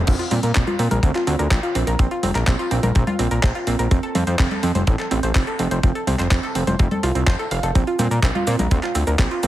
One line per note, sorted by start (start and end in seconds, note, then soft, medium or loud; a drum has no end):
0.07 0.16 A#1 loud
0.07 0.13 C4 medium
0.07 kick loud
0.07 closed hi-hat medium
0.07 crash loud
0.19 0.29 F4 medium
0.19 closed hi-hat soft
0.31 0.40 A#2 medium
0.31 0.41 C4 medium
0.31 open hi-hat loud
0.31 high conga medium
0.43 0.52 A#2 medium
0.43 0.49 A#4 medium
0.43 closed hi-hat medium
0.55 0.65 A#1 loud
0.55 0.61 C4 medium
0.55 kick loud
0.55 clap loud
0.55 closed hi-hat medium
0.67 0.79 F4 medium
0.67 closed hi-hat soft
0.67 high conga medium
0.79 0.88 A#2 medium
0.79 0.89 C4 medium
0.79 open hi-hat loud
0.91 1.00 A#1 medium
0.91 1.01 A#4 medium
0.91 closed hi-hat medium
0.91 high conga medium
1.03 1.12 D2 loud
1.03 1.09 C4 medium
1.03 kick loud
1.03 closed hi-hat medium
1.15 1.25 F4 medium
1.15 clap soft
1.15 closed hi-hat soft
1.27 1.36 D2 loud
1.27 1.37 C4 medium
1.27 open hi-hat loud
1.39 1.48 D2 medium
1.39 1.45 A#4 medium
1.39 closed hi-hat medium
1.51 1.60 A#1 loud
1.51 1.57 C4 medium
1.51 kick loud
1.51 clap loud
1.51 closed hi-hat medium
1.63 1.75 F4 medium
1.63 closed hi-hat soft
1.75 1.84 A#1 medium
1.75 1.85 C4 medium
1.75 open hi-hat loud
1.87 1.96 A#1 medium
1.87 1.97 A#4 medium
1.87 closed hi-hat medium
1.99 2.08 A#1 loud
1.99 2.05 C4 medium
1.99 kick loud
1.99 closed hi-hat medium
2.11 2.21 F4 medium
2.11 closed hi-hat soft
2.23 2.32 F1 loud
2.23 2.33 C4 medium
2.23 open hi-hat loud
2.23 high conga medium
2.35 2.44 A#1 medium
2.35 2.41 A#4 medium
2.35 clap soft
2.35 closed hi-hat medium
2.47 2.56 A#1 loud
2.47 2.53 C4 medium
2.47 kick loud
2.47 clap loud
2.47 closed hi-hat medium
2.59 2.71 F4 medium
2.59 closed hi-hat soft
2.71 2.80 A#1 loud
2.71 2.81 C4 medium
2.71 open hi-hat loud
2.83 2.92 A#1 medium
2.83 2.93 A#4 medium
2.83 closed hi-hat medium
2.83 high conga medium
2.95 3.04 A#1 loud
2.95 3.01 C4 medium
2.95 kick loud
2.95 closed hi-hat soft
3.07 3.17 F4 medium
3.07 closed hi-hat soft
3.07 high conga medium
3.19 3.28 A#1 loud
3.19 3.29 C4 medium
3.19 open hi-hat loud
3.31 3.40 A#1 medium
3.31 3.37 A#4 medium
3.31 closed hi-hat medium
3.43 3.52 A#1 loud
3.43 3.49 C4 medium
3.43 kick loud
3.43 clap loud
3.43 closed hi-hat medium
3.55 3.67 F4 medium
3.55 closed hi-hat soft
3.67 3.76 A#1 medium
3.67 3.77 C4 medium
3.67 open hi-hat loud
3.79 3.88 A#1 medium
3.79 3.89 A#4 medium
3.79 closed hi-hat medium
3.91 4.00 F1 loud
3.91 3.97 C4 medium
3.91 kick loud
3.91 closed hi-hat medium
4.03 4.13 A4 medium
4.03 closed hi-hat soft
4.15 4.24 F2 loud
4.15 4.25 C4 medium
4.15 open hi-hat loud
4.15 high conga medium
4.27 4.36 F2 medium
4.27 4.33 C5 medium
4.27 closed hi-hat soft
4.39 4.48 F1 loud
4.39 4.45 C4 medium
4.39 kick loud
4.39 clap loud
4.39 closed hi-hat soft
4.51 4.63 A4 medium
4.51 closed hi-hat soft
4.51 high conga medium
4.63 4.72 F2 loud
4.63 4.73 C4 medium
4.63 open hi-hat loud
4.75 4.84 F1 medium
4.75 4.85 C5 medium
4.75 closed hi-hat medium
4.75 high conga medium
4.87 4.96 A1 loud
4.87 4.93 C4 medium
4.87 kick loud
4.87 closed hi-hat soft
4.99 5.09 A4 medium
4.99 clap soft
4.99 closed hi-hat soft
5.11 5.20 A1 loud
5.11 5.21 C4 medium
5.11 open hi-hat loud
5.23 5.32 A1 medium
5.23 5.29 C5 medium
5.23 closed hi-hat medium
5.35 5.44 F1 loud
5.35 5.41 C4 medium
5.35 kick loud
5.35 clap loud
5.35 closed hi-hat soft
5.47 5.59 A4 medium
5.47 closed hi-hat soft
5.59 5.68 F1 loud
5.59 5.69 C4 medium
5.59 open hi-hat loud
5.71 5.80 F1 medium
5.71 5.81 C5 medium
5.71 closed hi-hat medium
5.83 5.92 F1 medium
5.83 5.89 C4 medium
5.83 kick loud
5.83 closed hi-hat medium
5.95 6.05 A4 medium
5.95 closed hi-hat soft
6.07 6.16 C2 loud
6.07 6.17 C4 medium
6.07 open hi-hat loud
6.07 high conga medium
6.19 6.28 F1 medium
6.19 6.25 C5 medium
6.19 clap soft
6.19 closed hi-hat medium
6.31 6.40 F1 loud
6.31 6.37 C4 medium
6.31 kick loud
6.31 clap loud
6.31 closed hi-hat medium
6.43 6.55 A4 medium
6.43 closed hi-hat soft
6.55 6.64 F1 medium
6.55 6.65 C4 medium
6.55 open hi-hat loud
6.67 6.76 F1 medium
6.67 6.77 C5 medium
6.67 closed hi-hat soft
6.67 high conga medium
6.79 6.88 F1 loud
6.79 6.85 C4 medium
6.79 kick loud
6.79 closed hi-hat soft
6.91 7.01 A4 medium
6.91 closed hi-hat soft
6.91 high conga medium
7.03 7.12 C2 loud
7.03 7.09 F4 medium
7.03 open hi-hat loud
7.15 7.24 C2 medium
7.15 7.27 C4 medium
7.15 closed hi-hat soft
7.27 7.36 F1 medium
7.27 7.37 C5 loud
7.27 kick loud
7.27 clap loud
7.27 closed hi-hat soft
7.39 7.45 A4 medium
7.39 closed hi-hat soft
7.51 7.60 F1 medium
7.51 7.63 F5 medium
7.51 open hi-hat loud
7.63 7.72 F1 medium
7.63 7.75 A4 medium
7.63 closed hi-hat medium
7.75 7.84 A#1 loud
7.75 7.81 C4 medium
7.75 kick loud
7.75 closed hi-hat medium
7.75 cabasa soft
7.87 7.97 F4 medium
7.87 closed hi-hat soft
7.99 8.08 A#2 loud
7.99 8.09 C4 medium
7.99 open hi-hat loud
7.99 high conga medium
7.99 cabasa medium
8.11 8.20 A#2 medium
8.11 8.17 A#4 medium
8.11 closed hi-hat soft
8.11 cabasa soft
8.23 8.32 A#1 loud
8.23 8.29 C4 medium
8.23 kick loud
8.23 clap loud
8.23 closed hi-hat soft
8.23 cabasa soft
8.35 8.47 F4 medium
8.35 closed hi-hat soft
8.35 high conga medium
8.47 8.56 A#2 loud
8.47 8.57 C4 medium
8.47 open hi-hat loud
8.47 cabasa medium
8.59 8.68 A#1 medium
8.59 8.69 A#4 medium
8.59 closed hi-hat soft
8.59 high conga medium
8.59 cabasa soft
8.71 8.80 D2 loud
8.71 8.77 C4 medium
8.71 kick loud
8.71 closed hi-hat soft
8.71 cabasa soft
8.83 8.93 F4 medium
8.83 clap soft
8.83 closed hi-hat soft
8.95 9.04 D2 loud
8.95 9.05 C4 medium
8.95 open hi-hat loud
8.95 cabasa medium
9.07 9.16 D2 medium
9.07 9.13 A#4 medium
9.07 closed hi-hat soft
9.07 cabasa soft
9.19 9.28 A#1 loud
9.19 9.25 C4 medium
9.19 kick loud
9.19 clap loud
9.19 closed hi-hat medium
9.19 cabasa soft
9.31 9.43 F4 medium
9.31 closed hi-hat soft
9.43 9.47 A#1 medium
9.43 9.47 C4 medium
9.43 open hi-hat loud
9.43 cabasa medium